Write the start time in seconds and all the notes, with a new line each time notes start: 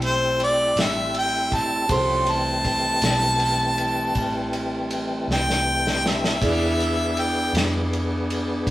Already playing: B1 G3 A3 C4 E4 C5
0.02 C5, ride
0.40 D5, ride
0.76 A1, snare, ride
0.80 E5
1.14 G5, ride
1.52 A5, kick, snare, ride
1.88 C2 F3 G3 C4 C#4 G4 A4 C5, kick, ride
1.94 C6
2.26 E3 G3 A3 C4, ride
2.32 A5
2.65 kick, ride
3.02 B1, snare, ride
3.40 ride
3.78 ride
4.15 A1, kick, ride
4.53 ride
4.91 ride
5.28 C2, snare
5.32 G5
5.50 snare
5.87 snare
6.06 E5, snare
6.24 snare
6.41 E2 B3 D4 E4 G#4 D5, kick, crash, ride
6.80 ride
7.17 G5, ride
7.53 F2, snare, ride
7.93 ride
8.30 ride
8.67 G2, kick, ride